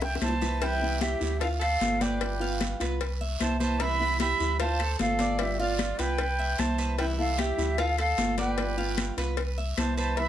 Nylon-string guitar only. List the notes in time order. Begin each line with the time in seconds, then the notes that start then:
0.21 E3 G3 E4
0.61 C3 E3 G3 B3 E4
0.81 E3 G3 B3 E4
1.00 E3 G3 B3 E4
1.20 E3 G3 B3 E4
1.41 muted nylon-string guitar stroke
1.80 D3 A3 C4 F4
2.20 G3 B3 F4
2.40 B3 F4
2.60 G3 B3 F4
2.80 B3 F4
3.00 muted nylon-string guitar stroke
3.40 E3 G3 B3 E4
3.79 C3 E3 G3 B3 E4
3.99 E3 G3 B3 E4
4.20 E3 G3 B3 E4
4.40 E3 G3 B3 E4
4.60 muted nylon-string guitar stroke
5.00 D3 A3 C4 F4
5.39 G3 B3 F4
5.59 B3 F4
5.79 G3 B3
5.99 B3 F4
6.19 muted nylon-string guitar stroke
6.58 E3 G3 E4
6.98 C3 E3 G3 B3 E4
7.18 E3 G3 B3 E4
7.39 G3 B3 E4
7.58 E3 G3 B3 E4
7.78 muted nylon-string guitar stroke
8.17 D3 A3 C4 F4
8.57 G3 B3 F4
8.77 B3 F4
8.97 G3 B3 F4
9.17 B3 F4
9.37 muted nylon-string guitar stroke
9.77 E3 G3 B3 E4
10.17 C3 E3 G3 B3 E4